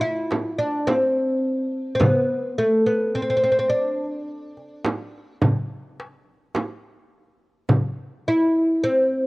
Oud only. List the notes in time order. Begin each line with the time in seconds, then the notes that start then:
0.01 E4
0.58 D4
0.87 C4
1.95 C4
2.00 B3
2.58 A3
2.86 B3
3.15 C4
3.22 C4
3.30 C4
3.37 C4
3.44 C4
3.52 C4
3.59 C4
3.69 D4
8.28 E4
8.84 C4